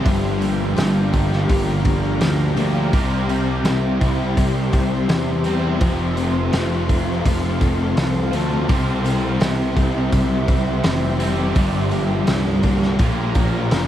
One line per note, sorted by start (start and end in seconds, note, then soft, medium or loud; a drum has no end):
0.00 1.84 G2 medium
0.00 2.54 G2 medium
0.00 0.39 G3 medium
0.00 1.46 G3 medium
0.00 1.11 G4 medium
0.00 5.77 G4 medium
0.05 0.73 G1 medium
0.05 1.86 G2 medium
0.05 2.55 D3 loud
0.05 0.75 F3 medium
0.05 2.55 G3 medium
0.05 2.91 F5 medium
0.05 2.91 A#5 medium
0.05 kick loud
0.05 open hi-hat medium
0.40 1.84 F3 medium
0.40 1.84 A#3 medium
0.40 open hi-hat medium
0.76 1.45 G1 medium
0.76 2.19 F3 medium
0.76 1.83 D4 medium
0.76 2.57 F4 medium
0.76 snare loud
0.76 open hi-hat medium
1.12 2.19 A#3 medium
1.12 2.93 D4 medium
1.12 2.92 G4 medium
1.12 kick medium
1.12 open hi-hat medium
1.32 snare soft
1.47 2.17 G1 medium
1.47 2.91 D3 medium
1.47 2.92 A#3 medium
1.47 2.93 G4 medium
1.47 kick medium
1.47 open hi-hat medium
1.84 2.55 F3 medium
1.84 2.55 A#3 medium
1.84 2.55 D4 medium
1.84 kick medium
1.84 open hi-hat medium
2.20 2.54 D2 medium
2.20 2.93 F3 medium
2.20 2.92 A#3 medium
2.20 snare loud
2.20 open hi-hat medium
2.56 2.90 D2 medium
2.56 2.92 G2 medium
2.56 2.91 D3 medium
2.56 2.93 F3 medium
2.56 2.91 G3 medium
2.56 2.93 A#3 medium
2.56 2.93 D4 medium
2.56 open hi-hat medium
2.92 3.61 C2 medium
2.92 4.36 C3 medium
2.92 4.73 C3 medium
2.92 5.43 C3 medium
2.92 3.65 G3 medium
2.92 5.44 G3 loud
2.92 5.78 E5 medium
2.92 11.52 C6 medium
2.92 kick loud
2.92 open hi-hat medium
2.97 5.45 C4 loud
3.28 4.71 G3 medium
3.28 4.72 C4 medium
3.28 open hi-hat soft
3.64 3.98 C2 medium
3.64 5.08 G3 medium
3.64 4.71 C4 medium
3.64 5.45 E4 medium
3.64 snare loud
3.64 open hi-hat medium
4.00 4.34 C2 medium
4.00 5.08 C4 medium
4.00 5.80 E4 medium
4.00 5.81 E4 medium
4.00 kick medium
4.00 open hi-hat medium
4.36 5.05 C2 medium
4.36 5.79 C3 medium
4.36 5.80 G3 medium
4.36 5.82 G4 medium
4.36 kick medium
4.36 open hi-hat medium
4.71 5.43 G3 medium
4.71 5.44 C4 medium
4.71 5.46 C4 medium
4.71 kick medium
4.71 open hi-hat medium
5.08 5.77 E2 medium
5.08 5.80 E3 medium
5.08 5.81 G3 medium
5.08 6.87 C4 medium
5.08 snare loud
5.08 open hi-hat medium
5.44 5.80 C3 medium
5.44 5.81 G3 medium
5.44 5.80 G3 medium
5.44 6.51 C4 medium
5.44 8.69 C4 medium
5.44 6.17 C4 medium
5.44 open hi-hat medium
5.79 6.49 F1 medium
5.79 7.60 F2 medium
5.79 8.31 F2 medium
5.79 8.32 C3 medium
5.79 7.24 F3 medium
5.79 6.52 F3 medium
5.79 8.67 F5 medium
5.79 kick loud
5.79 open hi-hat medium
5.83 8.30 F3 loud
5.83 8.67 A4 medium
6.15 7.60 A3 medium
6.15 7.61 C4 medium
6.15 open hi-hat medium
6.52 7.21 F1 medium
6.52 7.96 F3 medium
6.52 7.60 C4 medium
6.52 8.32 F4 medium
6.52 snare loud
6.52 open hi-hat medium
6.88 7.96 C4 medium
6.88 8.69 F4 medium
6.88 kick medium
6.88 open hi-hat medium
7.25 7.93 F1 medium
7.25 8.68 F3 medium
7.25 8.69 A3 medium
7.25 8.69 A4 medium
7.25 kick medium
7.25 open hi-hat medium
7.61 8.32 A3 medium
7.61 8.31 C4 medium
7.61 8.32 C4 medium
7.61 kick medium
7.61 open hi-hat medium
7.97 8.31 C2 medium
7.97 8.69 F3 medium
7.97 8.69 C4 medium
7.97 snare loud
7.97 open hi-hat medium
8.31 8.66 D2 medium
8.31 8.67 F2 medium
8.31 8.67 C3 medium
8.31 8.66 F3 medium
8.31 8.69 A3 medium
8.31 8.68 C4 medium
8.31 8.69 C4 medium
8.31 open hi-hat medium
8.66 9.37 C2 medium
8.66 10.47 C3 medium
8.66 11.18 C3 medium
8.66 10.11 C3 medium
8.66 11.18 G3 medium
8.66 9.39 G3 medium
8.66 11.18 C4 loud
8.66 12.95 G4 medium
8.66 11.53 E5 medium
8.66 kick loud
8.66 open hi-hat medium
9.05 10.48 G3 medium
9.05 9.75 C4 medium
9.05 open hi-hat medium
9.40 9.74 C2 medium
9.40 10.47 G3 medium
9.40 10.46 C4 medium
9.40 11.20 E4 medium
9.40 snare loud
9.40 open hi-hat medium
9.75 10.10 C2 medium
9.75 10.84 C4 medium
9.75 11.56 C4 medium
9.75 11.55 E4 medium
9.75 kick medium
9.75 open hi-hat soft
10.11 10.80 C2 loud
10.11 11.56 C3 medium
10.11 11.55 G3 medium
10.11 11.56 E4 medium
10.11 kick medium
10.11 open hi-hat medium
10.47 10.83 G3 medium
10.47 11.19 G3 medium
10.47 11.18 C4 medium
10.47 kick medium
10.47 open hi-hat medium
10.83 11.52 F1 medium
10.83 11.56 E3 medium
10.83 11.19 G3 medium
10.83 11.57 C4 medium
10.83 snare loud
10.83 open hi-hat medium
11.19 11.55 C3 medium
11.19 11.55 G3 medium
11.19 11.56 G3 medium
11.19 11.54 G3 medium
11.19 11.56 C4 medium
11.19 11.54 C4 medium
11.19 open hi-hat medium
11.54 12.24 G1 medium
11.54 12.99 G2 medium
11.54 12.97 G2 medium
11.54 12.99 G2 medium
11.54 12.98 D3 loud
11.54 12.26 F3 medium
11.54 12.98 G3 loud
11.54 13.88 A#5 medium
11.54 kick loud
11.54 open hi-hat medium
11.91 12.99 F3 soft
11.91 12.63 A#3 medium
11.91 open hi-hat medium
12.27 12.96 C2 medium
12.27 12.98 F3 medium
12.27 12.99 D4 medium
12.27 snare medium
12.27 open hi-hat medium
12.63 13.00 A#3 medium
12.63 13.00 G4 medium
12.63 kick medium
12.63 open hi-hat soft
12.82 snare soft
12.99 13.67 A#1 medium
12.99 13.88 A#2 medium
12.99 13.35 F3 medium
12.99 13.88 F3 loud
12.99 13.88 A#3 medium
12.99 kick loud
12.99 open hi-hat medium
13.35 13.70 F3 medium
13.35 13.88 F3 medium
13.35 13.88 D4 medium
13.35 kick loud
13.35 open hi-hat medium
13.71 13.88 F1 medium
13.71 13.88 D3 medium
13.71 13.88 F3 medium
13.71 13.88 A#3 medium
13.71 snare loud
13.71 open hi-hat medium